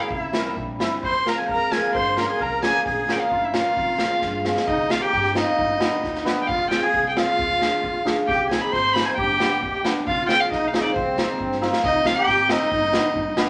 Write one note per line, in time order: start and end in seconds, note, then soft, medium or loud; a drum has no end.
0.00 0.12 G#4 medium
0.00 0.11 F5 medium
0.10 0.24 C2 medium
0.10 0.34 E4 medium
0.10 0.54 E5 medium
0.10 kick medium
0.32 0.54 C2 medium
0.32 0.78 G3 medium
0.32 0.45 C4 soft
0.32 0.45 E4 medium
0.32 0.55 A#4 medium
0.32 snare medium
0.57 0.77 A#1 medium
0.57 kick soft
0.79 1.00 G1 medium
0.79 1.07 G3 medium
0.79 0.91 C4 medium
0.79 0.91 E4 medium
0.79 snare medium
1.03 1.30 F2 medium
1.03 1.24 C5 loud
1.03 1.30 C6 medium
1.03 kick medium
1.25 1.70 G#3 medium
1.25 1.37 C4 soft
1.25 1.37 F4 medium
1.25 1.42 A#4 medium
1.25 1.39 A#5 medium
1.25 snare medium
1.38 1.49 G#5 medium
1.42 1.48 C5 medium
1.49 1.76 F2 medium
1.49 1.96 A#4 medium
1.49 1.73 A#5 loud
1.49 kick medium
1.71 1.99 G#3 medium
1.71 1.83 C4 medium
1.71 1.83 F4 medium
1.71 1.94 G#5 loud
1.71 snare medium
1.95 2.22 G2 medium
1.95 2.18 C5 medium
1.95 2.20 C6 loud
1.95 kick medium
2.16 2.29 A#3 medium
2.16 2.29 C#4 medium
2.16 2.29 G4 medium
2.16 2.20 A#4 medium
2.16 2.22 A#5 medium
2.16 snare medium
2.20 2.28 A#4 medium
2.20 2.27 C6 medium
2.25 2.40 G#4 medium
2.25 2.30 A#5 medium
2.30 2.44 G#5 medium
2.37 2.68 C2 medium
2.37 2.62 A#4 medium
2.37 kick soft
2.42 2.64 A#5 loud
2.61 2.75 A#3 medium
2.61 2.75 C#4 medium
2.61 2.75 G4 medium
2.61 2.82 G#4 medium
2.61 snare medium
2.65 2.86 G#5 loud
2.84 3.13 A#1 medium
2.84 3.32 G#4 medium
2.84 3.13 G#5 medium
2.84 kick medium
3.09 3.20 A#3 medium
3.09 3.21 C#4 medium
3.09 3.21 F4 medium
3.09 3.22 G5 medium
3.09 snare medium
3.20 3.31 F5 medium
3.30 3.59 G1 medium
3.30 3.41 F4 medium
3.30 3.46 F5 medium
3.30 kick soft
3.40 3.52 E4 medium
3.44 3.56 E5 medium
3.53 3.65 A#3 medium
3.53 3.65 C#4 medium
3.53 4.41 F4 medium
3.53 3.66 F4 medium
3.53 4.45 F5 loud
3.53 snare medium
3.77 4.04 F1 medium
3.77 kick medium
3.98 4.44 G#3 medium
3.98 4.11 C4 medium
3.98 4.11 F4 medium
3.98 snare medium
4.21 4.50 G2 medium
4.21 kick soft
4.21 snare soft
4.45 4.73 G#3 medium
4.45 4.56 C4 medium
4.45 4.56 F4 medium
4.45 snare medium
4.56 snare medium
4.67 4.95 C2 medium
4.67 4.91 D#4 medium
4.67 4.92 D#5 medium
4.67 kick medium
4.89 5.01 C4 medium
4.89 5.01 D#4 medium
4.89 5.01 F4 medium
4.89 5.01 G4 medium
4.89 5.03 F5 medium
4.89 snare medium
5.01 5.33 G4 loud
5.01 5.36 G5 loud
5.13 5.40 G2 medium
5.13 kick medium
5.24 snare soft
5.35 5.47 C4 medium
5.35 5.47 D#4 medium
5.35 6.03 D#4 medium
5.35 5.47 F4 medium
5.35 6.22 D#5 loud
5.35 snare medium
5.59 5.86 G1 medium
5.59 kick medium
5.79 5.91 B3 medium
5.79 5.92 D4 medium
5.79 5.92 G4 medium
5.79 snare medium
6.04 6.31 D2 medium
6.04 6.25 D#4 medium
6.04 kick medium
6.04 snare soft
6.15 snare soft
6.25 6.37 B3 medium
6.25 6.37 D4 medium
6.25 6.37 G4 medium
6.25 snare medium
6.41 6.49 G5 medium
6.47 6.76 F1 loud
6.47 6.84 F4 medium
6.47 6.70 F5 loud
6.47 kick medium
6.70 6.82 C4 medium
6.70 6.82 F4 medium
6.70 6.82 G#4 medium
6.70 6.84 G5 medium
6.70 snare medium
6.83 7.14 G#4 medium
6.83 7.08 G#5 medium
6.94 7.21 C2 medium
6.94 kick medium
7.09 7.19 G5 medium
7.16 7.27 C4 medium
7.16 8.02 F4 medium
7.16 7.28 F4 medium
7.16 7.28 G#4 medium
7.16 8.06 F5 loud
7.16 snare medium
7.39 7.66 D2 medium
7.39 kick medium
7.61 7.72 D4 medium
7.61 7.72 F4 medium
7.61 7.72 G#4 medium
7.61 snare medium
7.84 8.10 D2 medium
7.84 kick medium
8.05 8.16 D4 medium
8.05 8.16 F4 medium
8.05 8.17 G#4 medium
8.05 snare medium
8.27 8.55 C2 medium
8.27 8.50 G4 medium
8.27 8.48 G5 medium
8.27 kick medium
8.49 8.61 C4 medium
8.49 8.62 D#4 medium
8.49 8.62 G4 medium
8.49 8.71 G#4 medium
8.49 8.62 G#5 medium
8.49 snare medium
8.61 8.74 B5 medium
8.71 9.00 G#1 medium
8.71 9.18 C5 loud
8.71 8.95 C6 loud
8.71 kick soft
8.71 snare soft
8.93 9.06 C4 medium
8.93 9.06 D#4 medium
8.93 9.06 G4 medium
8.93 9.07 B5 loud
8.93 snare medium
9.05 9.17 G#5 medium
9.17 9.44 G1 medium
9.17 9.61 G4 medium
9.17 9.80 G5 medium
9.17 kick medium
9.40 9.51 B3 medium
9.40 9.51 D4 medium
9.40 9.51 G4 medium
9.40 snare medium
9.62 9.89 D2 medium
9.62 9.82 G4 medium
9.62 kick medium
9.85 9.95 B3 medium
9.85 9.95 D4 medium
9.85 9.96 G4 medium
9.85 snare medium
10.07 10.33 F1 medium
10.07 10.39 F4 loud
10.07 10.27 F5 medium
10.07 kick medium
10.29 10.39 C4 medium
10.29 10.40 F4 medium
10.29 10.40 G#4 medium
10.29 10.42 G5 loud
10.29 snare medium
10.40 10.50 F4 medium
10.40 10.51 F5 medium
10.52 10.78 B1 medium
10.52 10.92 D#4 medium
10.52 10.69 D#5 medium
10.52 kick medium
10.52 snare soft
10.68 10.76 F5 medium
10.74 10.84 C4 medium
10.74 10.84 F4 medium
10.74 10.85 G#4 medium
10.74 10.83 D#5 medium
10.74 snare medium
10.81 10.95 D5 loud
10.96 11.22 C2 loud
10.96 11.57 C4 medium
10.96 11.57 C5 medium
10.96 kick medium
11.18 11.29 C4 medium
11.18 11.29 D#4 medium
11.18 11.29 G4 medium
11.18 snare medium
11.40 11.66 G2 medium
11.40 kick medium
11.52 snare soft
11.61 11.72 C4 medium
11.61 11.72 D#4 medium
11.61 11.72 F4 medium
11.61 snare soft
11.73 snare medium
11.84 12.10 C2 loud
11.84 12.06 D#4 medium
11.84 12.08 D#5 loud
11.84 kick medium
12.05 12.16 C4 medium
12.05 12.16 D#4 medium
12.05 12.16 F4 medium
12.05 12.17 G4 medium
12.05 12.17 F5 medium
12.05 snare medium
12.16 12.47 G4 loud
12.16 12.51 G5 loud
12.27 12.54 G#1 medium
12.27 kick medium
12.27 snare soft
12.49 12.61 C4 medium
12.49 12.61 D#4 medium
12.49 13.14 D#4 medium
12.49 12.61 G4 medium
12.49 13.37 D#5 loud
12.49 snare medium
12.71 12.97 G1 medium
12.71 kick medium
12.93 13.04 B3 medium
12.93 13.04 D4 medium
12.93 13.04 G4 medium
12.93 snare medium
13.15 13.42 G1 medium
13.15 13.35 D#4 medium
13.15 kick medium
13.37 13.48 B3 medium
13.37 13.48 D4 medium
13.37 13.48 G4 medium
13.37 snare medium